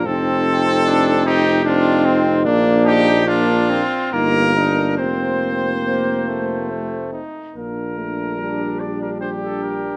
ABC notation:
X:1
M:3/4
L:1/16
Q:1/4=73
K:Bb
V:1 name="Trumpet"
A6 G2 F4 | z2 G2 F4 B4 | c8- c2 z2 | B6 d B c A B2 |]
V:2 name="Flugelhorn"
C4 D2 E2 D2 C2 | D2 E2 D2 C2 B,2 E2 | C4 B,2 A,4 E2 | z4 D4 G4 |]
V:3 name="French horn"
E8 E4 | D4 D2 z2 E2 D2 | C8 C2 z2 | D8 D4 |]
V:4 name="Trombone"
C8 C4 | B,4 B,2 z2 B,4 | B,8 A,2 z2 | B,2 A,2 G,8 |]
V:5 name="Bass trombone" clef=bass
F,,,12 | B,,,6 z2 G,,,4 | F,,,8- F,,,2 z2 | B,,,12 |]